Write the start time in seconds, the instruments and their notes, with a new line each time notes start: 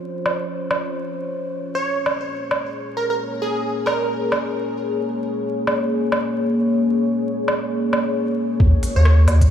Already playing: ambient pad F4 C5 C#5
0.26 low woodblock
0.71 low woodblock
1.38 ambient pad A#3 G#4
1.75 digital synth lead C#5
2.06 low woodblock
2.51 low woodblock
2.97 digital synth lead A#4
3.10 digital synth lead A#4
3.42 digital synth lead G#4
3.86 digital synth lead A#4, low woodblock
4.32 low woodblock
5.67 low woodblock
6.12 low woodblock
7.48 low woodblock
7.93 low woodblock
8.60 sub bass D#2, ambient pad A#3 F#4 D#5, kick
8.83 open hi-hat
8.96 sub bass D#2, digital synth lead C#5
9.05 cross-stick
9.28 sub bass D#2, open hi-hat, low woodblock
9.41 kick, closed hi-hat